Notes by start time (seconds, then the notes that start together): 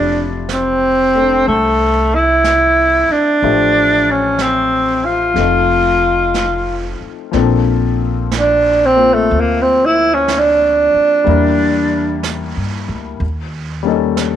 Already playing: F1 F3 A3 C4 D4 E4 G4
0.49 C4, brush sweep, snare, hi-hat pedal
1.15 A3 D4 A4
1.46 C2 A3, brush sweep
2.15 E4
2.44 brush sweep, snare, hi-hat pedal
3.09 D4, muted upright bass stroke
3.41 A1 F3 A3 G4 C5 E5, brush sweep
4.11 C#4
4.38 C4, brush sweep, snare, hi-hat pedal
5.05 F4
5.34 F1 F3 A3 C4, brush sweep, snare
5.38 D#4 A4
6.34 brush sweep, snare, hi-hat pedal
7.01 muted upright bass stroke
7.31 A#1 F3 A#3 C4 D4, brush sweep, snare
7.36 A4
8.31 brush sweep, snare, hi-hat pedal
8.39 D4
8.86 C4
8.96 A#3 C4 F4
9.14 A3
9.30 D2, brush sweep
9.40 A#3
9.62 C4
9.86 E4
10.14 C#4
10.28 brush sweep, snare, hi-hat pedal
10.39 D4
10.94 muted upright bass stroke
11.24 E2 G3 A#3 D4 E4, brush sweep
11.29 A#4
12.23 brush sweep, snare, hi-hat pedal
12.57 G2
12.89 D2
13.20 D#2, brush sweep
13.83 G3 A#3 C#4
13.87 D#4 A4
14.17 brush sweep, snare, hi-hat pedal